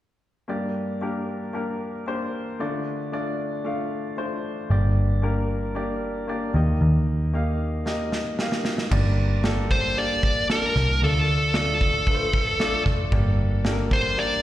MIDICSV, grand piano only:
0, 0, Header, 1, 2, 480
1, 0, Start_track
1, 0, Key_signature, -2, "minor"
1, 0, Tempo, 526316
1, 446, Time_signature, 4, 2, 24, 8
1, 13151, End_track
2, 0, Start_track
2, 0, Title_t, "Grand piano"
2, 0, Program_c, 0, 0
2, 436, Note_on_c, 0, 58, 63
2, 443, Note_on_c, 0, 43, 52
2, 444, Note_on_c, 0, 62, 55
2, 448, Note_on_c, 0, 67, 62
2, 452, Note_on_c, 0, 74, 64
2, 600, Control_c, 0, 64, 127
2, 789, Note_off_c, 0, 58, 0
2, 793, Note_off_c, 0, 62, 0
2, 795, Note_off_c, 0, 67, 0
2, 797, Note_off_c, 0, 74, 0
2, 923, Note_on_c, 0, 58, 63
2, 927, Note_on_c, 0, 62, 58
2, 932, Note_on_c, 0, 67, 60
2, 937, Note_on_c, 0, 70, 62
2, 1129, Note_off_c, 0, 43, 0
2, 1273, Note_off_c, 0, 58, 0
2, 1275, Note_off_c, 0, 62, 0
2, 1277, Note_off_c, 0, 67, 0
2, 1279, Note_off_c, 0, 70, 0
2, 1398, Note_on_c, 0, 58, 61
2, 1403, Note_on_c, 0, 62, 48
2, 1407, Note_on_c, 0, 67, 54
2, 1412, Note_on_c, 0, 70, 67
2, 1750, Note_off_c, 0, 58, 0
2, 1753, Note_off_c, 0, 62, 0
2, 1755, Note_off_c, 0, 67, 0
2, 1758, Note_off_c, 0, 70, 0
2, 1882, Note_on_c, 0, 58, 57
2, 1884, Note_on_c, 0, 62, 55
2, 1893, Note_on_c, 0, 67, 54
2, 1894, Note_on_c, 0, 72, 74
2, 2233, Note_off_c, 0, 58, 0
2, 2234, Note_off_c, 0, 62, 0
2, 2238, Note_off_c, 0, 67, 0
2, 2239, Note_off_c, 0, 72, 0
2, 2366, Note_on_c, 0, 57, 64
2, 2367, Note_on_c, 0, 62, 57
2, 2371, Note_on_c, 0, 65, 56
2, 2372, Note_on_c, 0, 50, 58
2, 2376, Note_on_c, 0, 74, 70
2, 2379, Control_c, 0, 64, 0
2, 2558, Control_c, 0, 64, 127
2, 2715, Note_off_c, 0, 57, 0
2, 2715, Note_off_c, 0, 62, 0
2, 2718, Note_off_c, 0, 65, 0
2, 2720, Note_off_c, 0, 74, 0
2, 2846, Note_on_c, 0, 57, 59
2, 2849, Note_on_c, 0, 62, 58
2, 2855, Note_on_c, 0, 65, 53
2, 2858, Note_on_c, 0, 74, 76
2, 3054, Note_off_c, 0, 50, 0
2, 3195, Note_off_c, 0, 57, 0
2, 3197, Note_off_c, 0, 62, 0
2, 3200, Note_off_c, 0, 65, 0
2, 3201, Note_off_c, 0, 74, 0
2, 3322, Note_on_c, 0, 57, 63
2, 3327, Note_on_c, 0, 62, 58
2, 3327, Note_on_c, 0, 65, 56
2, 3335, Note_on_c, 0, 77, 66
2, 3673, Note_off_c, 0, 57, 0
2, 3676, Note_off_c, 0, 62, 0
2, 3676, Note_off_c, 0, 65, 0
2, 3680, Note_off_c, 0, 77, 0
2, 3801, Note_on_c, 0, 57, 56
2, 3806, Note_on_c, 0, 62, 56
2, 3811, Note_on_c, 0, 65, 52
2, 3812, Note_on_c, 0, 72, 70
2, 4153, Note_off_c, 0, 57, 0
2, 4155, Note_off_c, 0, 62, 0
2, 4158, Note_off_c, 0, 65, 0
2, 4159, Note_off_c, 0, 72, 0
2, 4283, Note_on_c, 0, 58, 59
2, 4290, Note_on_c, 0, 62, 55
2, 4292, Note_on_c, 0, 43, 55
2, 4294, Note_on_c, 0, 67, 62
2, 4296, Note_on_c, 0, 74, 73
2, 4303, Control_c, 0, 64, 0
2, 4448, Control_c, 0, 64, 127
2, 4634, Note_off_c, 0, 58, 0
2, 4638, Note_off_c, 0, 62, 0
2, 4640, Note_off_c, 0, 67, 0
2, 4641, Note_off_c, 0, 74, 0
2, 4761, Note_on_c, 0, 58, 62
2, 4765, Note_on_c, 0, 62, 54
2, 4769, Note_on_c, 0, 67, 56
2, 4773, Note_on_c, 0, 70, 76
2, 4975, Note_off_c, 0, 43, 0
2, 5113, Note_off_c, 0, 58, 0
2, 5115, Note_off_c, 0, 62, 0
2, 5118, Note_off_c, 0, 67, 0
2, 5119, Note_off_c, 0, 70, 0
2, 5243, Note_on_c, 0, 58, 67
2, 5247, Note_on_c, 0, 62, 57
2, 5252, Note_on_c, 0, 67, 62
2, 5255, Note_on_c, 0, 74, 66
2, 5594, Note_off_c, 0, 58, 0
2, 5596, Note_off_c, 0, 62, 0
2, 5599, Note_off_c, 0, 67, 0
2, 5600, Note_off_c, 0, 74, 0
2, 5722, Note_on_c, 0, 58, 68
2, 5728, Note_on_c, 0, 62, 56
2, 5734, Note_on_c, 0, 67, 60
2, 5739, Note_on_c, 0, 74, 69
2, 5951, Note_off_c, 0, 58, 0
2, 5962, Note_off_c, 0, 67, 0
2, 5965, Note_on_c, 0, 58, 61
2, 5970, Note_off_c, 0, 62, 0
2, 5970, Note_on_c, 0, 63, 58
2, 5975, Note_off_c, 0, 74, 0
2, 5975, Note_on_c, 0, 51, 52
2, 5976, Note_on_c, 0, 67, 63
2, 5980, Note_on_c, 0, 75, 67
2, 5981, Control_c, 0, 64, 0
2, 6140, Control_c, 0, 64, 127
2, 6544, Note_off_c, 0, 58, 0
2, 6547, Note_off_c, 0, 63, 0
2, 6550, Note_off_c, 0, 67, 0
2, 6552, Note_off_c, 0, 75, 0
2, 6657, Note_off_c, 0, 51, 0
2, 6689, Note_on_c, 0, 58, 58
2, 6692, Note_on_c, 0, 63, 58
2, 6697, Note_on_c, 0, 67, 54
2, 6703, Note_on_c, 0, 77, 65
2, 7037, Note_off_c, 0, 58, 0
2, 7039, Note_off_c, 0, 63, 0
2, 7041, Note_off_c, 0, 67, 0
2, 7045, Note_off_c, 0, 77, 0
2, 7165, Note_on_c, 0, 58, 59
2, 7171, Note_on_c, 0, 63, 54
2, 7174, Note_on_c, 0, 67, 56
2, 7178, Note_on_c, 0, 75, 69
2, 7516, Note_off_c, 0, 58, 0
2, 7518, Note_off_c, 0, 63, 0
2, 7520, Note_off_c, 0, 67, 0
2, 7522, Note_off_c, 0, 75, 0
2, 7651, Note_on_c, 0, 58, 60
2, 7654, Note_on_c, 0, 63, 57
2, 7658, Note_on_c, 0, 67, 60
2, 7661, Note_on_c, 0, 77, 72
2, 7998, Note_off_c, 0, 58, 0
2, 8000, Note_off_c, 0, 63, 0
2, 8002, Note_off_c, 0, 67, 0
2, 8003, Note_off_c, 0, 77, 0
2, 8122, Note_on_c, 0, 58, 68
2, 8127, Note_on_c, 0, 62, 66
2, 8131, Note_on_c, 0, 43, 64
2, 8135, Note_on_c, 0, 67, 64
2, 8137, Note_on_c, 0, 74, 81
2, 8143, Control_c, 0, 64, 0
2, 8319, Control_c, 0, 64, 127
2, 8474, Note_off_c, 0, 58, 0
2, 8476, Note_off_c, 0, 62, 0
2, 8480, Note_off_c, 0, 67, 0
2, 8481, Note_off_c, 0, 74, 0
2, 8603, Note_on_c, 0, 58, 74
2, 8608, Note_on_c, 0, 62, 62
2, 8611, Note_on_c, 0, 67, 69
2, 8616, Note_on_c, 0, 69, 85
2, 8814, Note_off_c, 0, 43, 0
2, 8954, Note_off_c, 0, 58, 0
2, 8957, Note_off_c, 0, 62, 0
2, 8958, Note_off_c, 0, 67, 0
2, 8960, Note_off_c, 0, 69, 0
2, 9087, Note_on_c, 0, 58, 64
2, 9091, Note_on_c, 0, 62, 59
2, 9094, Note_on_c, 0, 67, 56
2, 9098, Note_on_c, 0, 74, 65
2, 9436, Note_off_c, 0, 58, 0
2, 9437, Note_off_c, 0, 62, 0
2, 9439, Note_off_c, 0, 67, 0
2, 9441, Note_off_c, 0, 74, 0
2, 9568, Note_on_c, 0, 58, 64
2, 9571, Note_on_c, 0, 62, 56
2, 9575, Note_on_c, 0, 67, 48
2, 9580, Note_on_c, 0, 81, 61
2, 9916, Note_off_c, 0, 58, 0
2, 9917, Note_off_c, 0, 62, 0
2, 9919, Note_off_c, 0, 67, 0
2, 9922, Note_off_c, 0, 81, 0
2, 10048, Note_on_c, 0, 57, 62
2, 10053, Note_on_c, 0, 62, 56
2, 10055, Note_on_c, 0, 65, 56
2, 10058, Note_on_c, 0, 50, 53
2, 10060, Control_c, 0, 64, 0
2, 10063, Note_on_c, 0, 74, 69
2, 10209, Control_c, 0, 64, 127
2, 10395, Note_off_c, 0, 57, 0
2, 10398, Note_off_c, 0, 62, 0
2, 10399, Note_off_c, 0, 65, 0
2, 10403, Note_off_c, 0, 74, 0
2, 10527, Note_on_c, 0, 57, 62
2, 10531, Note_on_c, 0, 62, 57
2, 10536, Note_on_c, 0, 65, 58
2, 10538, Note_on_c, 0, 74, 63
2, 10736, Note_off_c, 0, 50, 0
2, 10874, Note_off_c, 0, 57, 0
2, 10876, Note_off_c, 0, 62, 0
2, 10879, Note_off_c, 0, 65, 0
2, 10880, Note_off_c, 0, 74, 0
2, 11001, Note_on_c, 0, 57, 55
2, 11004, Note_on_c, 0, 62, 55
2, 11009, Note_on_c, 0, 65, 53
2, 11014, Note_on_c, 0, 71, 50
2, 11068, Note_off_c, 0, 71, 0
2, 11074, Note_on_c, 0, 72, 61
2, 11351, Note_off_c, 0, 57, 0
2, 11352, Note_off_c, 0, 62, 0
2, 11355, Note_off_c, 0, 65, 0
2, 11387, Note_off_c, 0, 72, 0
2, 11484, Note_on_c, 0, 57, 73
2, 11487, Note_on_c, 0, 62, 67
2, 11490, Note_on_c, 0, 65, 70
2, 11497, Note_on_c, 0, 74, 80
2, 11832, Note_off_c, 0, 57, 0
2, 11834, Note_off_c, 0, 62, 0
2, 11835, Note_off_c, 0, 65, 0
2, 11838, Note_off_c, 0, 74, 0
2, 11964, Note_on_c, 0, 58, 72
2, 11967, Note_on_c, 0, 62, 71
2, 11968, Note_on_c, 0, 43, 64
2, 11969, Note_on_c, 0, 67, 67
2, 11974, Note_on_c, 0, 74, 74
2, 11976, Control_c, 0, 64, 0
2, 12149, Control_c, 0, 64, 127
2, 12311, Note_off_c, 0, 58, 0
2, 12313, Note_off_c, 0, 62, 0
2, 12314, Note_off_c, 0, 67, 0
2, 12316, Note_off_c, 0, 74, 0
2, 12447, Note_on_c, 0, 58, 71
2, 12451, Note_on_c, 0, 62, 65
2, 12454, Note_on_c, 0, 67, 65
2, 12457, Note_on_c, 0, 69, 64
2, 12509, Note_off_c, 0, 69, 0
2, 12517, Note_on_c, 0, 70, 82
2, 12649, Note_off_c, 0, 43, 0
2, 12793, Note_off_c, 0, 58, 0
2, 12795, Note_off_c, 0, 62, 0
2, 12796, Note_off_c, 0, 67, 0
2, 12828, Note_off_c, 0, 70, 0
2, 12921, Note_on_c, 0, 58, 62
2, 12926, Note_on_c, 0, 62, 51
2, 12930, Note_on_c, 0, 67, 56
2, 12936, Note_on_c, 0, 74, 65
2, 13151, Note_off_c, 0, 58, 0
2, 13151, Note_off_c, 0, 62, 0
2, 13151, Note_off_c, 0, 67, 0
2, 13151, Note_off_c, 0, 74, 0
2, 13151, End_track
0, 0, End_of_file